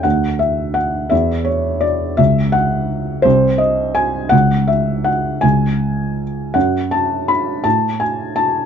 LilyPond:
<<
  \new Staff \with { instrumentName = "Felt piano" } { \time 6/8 \key fis \minor \tempo 4. = 56 fis''8 e''8 fis''8 e''8 cis''8 d''8 | e''8 fis''4 bis'8 dis''8 gis''8 | fis''8 e''8 fis''8 gis''4 r8 | fis''8 a''8 b''8 a''8 gis''8 a''8 | }
  \new Staff \with { instrumentName = "Felt piano" } { \clef bass \time 6/8 \key fis \minor d,4. e,4. | cis,4. bis,,4. | cis,4. cis,4. | fis,4. a,4. | }
>>